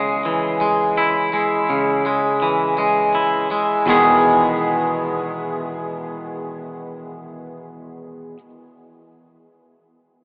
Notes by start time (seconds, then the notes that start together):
Already playing: C#3 G#3 G#4
0.25 E3
0.61 G#3
0.97 E4
1.33 G#3
1.70 C#3
2.06 G#3
2.42 E3
2.78 G#3
3.15 E4
3.51 G#3
3.86 E2 B2 D#3 G#3 B3
3.90 G#4